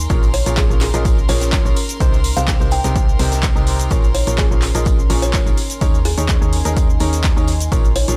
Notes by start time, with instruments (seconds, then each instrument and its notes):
Already playing: ambient pad D#4 G#5, violin section A#4 C6
0.09 fm bass A#1, upright piano A#2 C#4 F4 G#4 A#4 C#5, ambient pad C#4, kick, closed hi-hat, tambourine, shaker
0.22 ambient pad A#4, closed hi-hat, tambourine, shaker
0.34 kalimba C#5, closed hi-hat, open hi-hat, tambourine
0.46 fm bass A#1, upright piano A#2 C#4 F4 G#4 A#4 C#5, closed hi-hat, tambourine, shaker
0.56 kalimba G#4, kick, snare, clap, closed hi-hat, tambourine, shaker
0.70 fm bass A#1, upright piano A#2 C#4 F4 G#4 A#4 C#5, shaker
0.80 kalimba G#4, snare, clap, closed hi-hat, open hi-hat, tambourine
0.94 fm bass A#1, upright piano A#2 C#4 F4 G#4 A#4 D#5, closed hi-hat, tambourine, shaker
1.05 kick, closed hi-hat, tambourine, shaker
1.18 shaker
1.28 fm bass A#1, upright piano A#2 C#4 F4 G#4 A#4 C#5, kalimba C#5, snare, closed hi-hat, open hi-hat, tambourine
1.40 snare, closed hi-hat, tambourine, shaker
1.52 kick, snare, clap, closed hi-hat, tambourine, shaker
1.65 fm bass A#1, upright piano C#4 F4 G#4 A#4 C#5, closed hi-hat, tambourine, shaker
1.76 ambient pad D#4, closed hi-hat, open hi-hat, tambourine
1.89 closed hi-hat, tambourine, shaker
2.00 fm bass C2, upright piano C3 C4 D#4 G4 A#4 C5, kick, closed hi-hat, tambourine, shaker
2.13 ambient pad C5, tambourine, shaker
2.24 closed hi-hat, open hi-hat, tambourine
2.37 fm bass C2, upright piano C3 C4 D#4 G4 A#4 C5, kalimba F5, closed hi-hat, tambourine, shaker
2.48 kick, snare, clap, closed hi-hat, tambourine, shaker
2.59 fm bass C2, upright piano C3 C4 D#4 G4 A#4 C5, tambourine, shaker
2.71 kalimba G5, ambient pad A#5, closed hi-hat, open hi-hat, tambourine
2.84 fm bass C2, upright piano C3 C4 D#4 G4 A#4 D#5, closed hi-hat, tambourine, shaker
2.96 kick, closed hi-hat, tambourine, shaker
3.09 shaker
3.19 fm bass C2, upright piano C3 C4 D#4 G4 A#4 C5, snare, closed hi-hat, open hi-hat, tambourine
3.32 snare, closed hi-hat, tambourine, shaker
3.43 kick, snare, clap, closed hi-hat, tambourine, shaker
3.56 fm bass C2, upright piano C3 C4 D#4 G4 A#4 D#5, tambourine, shaker
3.67 snare, closed hi-hat, open hi-hat, tambourine
3.79 closed hi-hat, tambourine, shaker
3.90 fm bass A#1, upright piano A#2 C#4 F4 G#4 A#4 C#5, ambient pad C#4, kick, closed hi-hat, tambourine, shaker
4.02 closed hi-hat, tambourine, shaker
4.12 ambient pad A#4, kalimba C#5, closed hi-hat, open hi-hat, tambourine
4.18 ambient pad G#5
4.27 fm bass A#1, upright piano A#2 C#4 F4 G#4 A#4 C#5, closed hi-hat, tambourine, shaker
4.38 kalimba G#4, kick, snare, clap, closed hi-hat, tambourine, shaker
4.51 fm bass A#1, upright piano A#2 C#4 F4 G#4 A#4 C#5, shaker
4.62 snare, clap, closed hi-hat, open hi-hat, tambourine
4.75 fm bass A#1, upright piano A#2 C#4 F4 G#4 A#4 D#5, closed hi-hat, tambourine, shaker
4.85 kick, closed hi-hat, tambourine, shaker
4.99 shaker
5.10 fm bass A#1, upright piano A#2 C#4 F4 G#4 A#4 C#5, snare, closed hi-hat, open hi-hat, tambourine
5.22 kalimba C#5, snare, closed hi-hat, tambourine, shaker
5.33 kick, snare, clap, closed hi-hat, tambourine, shaker
5.46 fm bass A#1, upright piano D#3 C#4 F4 G#4 A#4 C#5, closed hi-hat, tambourine, shaker
5.57 ambient pad D#4, closed hi-hat, open hi-hat, tambourine
5.70 closed hi-hat, tambourine, shaker
5.81 fm bass D#2, upright piano D#3 C#4 D#4 G#4 A#4 C#5, kick, closed hi-hat, tambourine, shaker
5.94 tambourine, shaker
6.05 kalimba G#4, closed hi-hat, open hi-hat, tambourine
6.18 fm bass D#2, upright piano D#3 C#4 D#4 G#4 A#4 C#5, closed hi-hat, shaker
6.28 kick, snare, clap, closed hi-hat, tambourine, shaker
6.41 fm bass D#2, upright piano D#3 C#4 D#4 G#4 A#4 C#5, shaker
6.53 closed hi-hat, open hi-hat, tambourine
6.65 fm bass D#2, upright piano D#3 C#4 D#4 G#4 A#4 D#5, closed hi-hat, tambourine, shaker
6.77 kick, closed hi-hat, tambourine, shaker
6.90 shaker
7.00 fm bass D#2, upright piano D#3 C#4 D#4 G#4 A#4 C#5, closed hi-hat, open hi-hat, tambourine
7.13 snare, closed hi-hat, tambourine, shaker
7.23 kick, snare, clap, closed hi-hat, tambourine, shaker
7.37 fm bass D#2, upright piano D#3 C#4 D#4 G#4 A#4 C#5, tambourine, shaker
7.48 snare, closed hi-hat, open hi-hat, tambourine
7.60 closed hi-hat, tambourine, shaker
7.72 fm bass A#1, upright piano A#2 C#4 F4 G#4 A#4 C#5, ambient pad C#4, kick, closed hi-hat, tambourine, shaker
7.84 closed hi-hat, tambourine, shaker
7.96 kalimba C#5, closed hi-hat, open hi-hat, tambourine
8.07 fm bass A#1, upright piano A#2 C#4 F4 G#4 A#4 C#5, closed hi-hat, tambourine, shaker